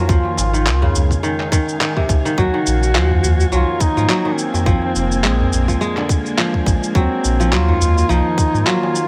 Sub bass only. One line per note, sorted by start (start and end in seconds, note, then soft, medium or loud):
0.09 0.21 C#2 medium
0.38 0.69 G#1 medium
0.67 0.89 C#2 medium
0.95 1.17 C#2 medium
2.09 2.21 C#2 medium
2.38 2.50 D#2 medium
2.67 2.97 A#1 medium
2.95 3.17 D#2 medium
3.24 3.46 D#2 medium
3.52 3.64 C2 medium
3.97 4.06 G#2 loud
4.66 4.78 A#1 loud
4.95 5.25 F1 medium
5.24 5.46 A#1 medium
5.53 5.75 A#1 medium
6.66 6.78 A#1 loud
6.95 7.07 D#2 loud
7.24 7.54 A#1 medium
7.53 7.75 D#2 medium
7.81 8.03 D#2 medium
8.10 8.21 C2 medium
8.54 8.63 G#2 loud